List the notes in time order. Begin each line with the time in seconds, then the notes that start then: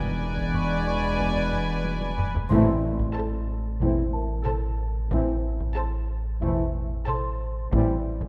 Already playing: E1 E2 B2 G#3 B3 D4 B4 D5 G#5
0.05 taiko low-mid
0.38 taiko
0.54 C#6, taiko low-mid
0.87 C#6
1.19 taiko
1.36 taiko low-mid
1.52 taiko low-mid
1.85 taiko high
2.01 taiko high
2.18 taiko low-mid
2.34 taiko low
2.49 A1 A2 E3 A3 C4 E4 C5 C6, taiko
2.99 taiko
3.15 A4 C5 A5
3.81 E1 E2 E3 A3 C4 E4, taiko
4.13 A#4 A5
4.45 A4 C5 A5, taiko mid
5.12 A1 A2 E3 C4 E4, taiko
5.61 taiko
5.76 A4 C5 A5
6.41 E1 E2 E3 A3 C4 E4, taiko
7.08 A4 C5 A5 C6, taiko mid
7.72 A1 A2 E3 G3 C4 E4, taiko
8.21 taiko